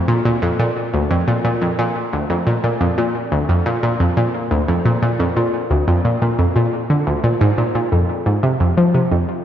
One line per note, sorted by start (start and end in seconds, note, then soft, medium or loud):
0.08 0.20 A#2 medium
0.25 0.41 A#2 medium
0.42 0.50 F2 medium
0.59 0.72 A#2 medium
0.93 1.06 D2 medium
1.11 1.23 F2 medium
1.28 1.40 A#2 medium
1.45 1.61 A#2 medium
1.62 1.69 F2 medium
1.79 1.91 A#2 medium
2.13 2.25 D2 medium
2.30 2.42 F2 medium
2.47 2.59 A#2 medium
2.64 2.80 A#2 medium
2.81 2.88 F2 medium
2.98 3.10 A#2 medium
3.32 3.44 D2 medium
3.49 3.61 F2 medium
3.66 3.78 A#2 medium
3.83 3.99 A#2 medium
4.00 4.08 F2 medium
4.17 4.29 A#2 medium
4.51 4.64 D2 medium
4.68 4.81 F2 medium
4.85 4.98 A#2 medium
5.02 5.19 A#2 medium
5.20 5.27 F2 medium
5.36 5.49 A#2 medium
5.70 5.83 D2 medium
5.88 6.00 F2 medium
6.05 6.17 A#2 medium
6.22 6.38 A#2 medium
6.39 6.46 F2 medium
6.56 6.68 A#2 medium
6.90 7.02 D3 medium
7.07 7.14 D2 medium
7.24 7.36 A#2 medium
7.41 7.48 G#2 loud
7.58 7.74 A#2 medium
7.75 7.91 A#2 medium
7.92 8.05 F2 medium
8.26 8.39 G#2 medium
8.43 8.56 C3 medium
8.60 8.73 F2 medium
8.77 8.94 F3 medium
8.95 9.02 C3 medium
9.11 9.24 F2 medium